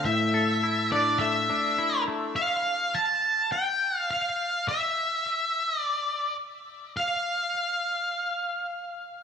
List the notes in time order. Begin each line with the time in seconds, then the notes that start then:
Already playing: A3
0.05 A2 E5
0.34 A4
0.63 E4
0.92 D4 D5
1.19 A3 E5
1.50 D4
1.78 E4
2.08 A3
2.36 F5
2.95 A5
3.52 G5
3.98 F5
4.10 F5
4.68 E5
5.79 D5
6.97 F5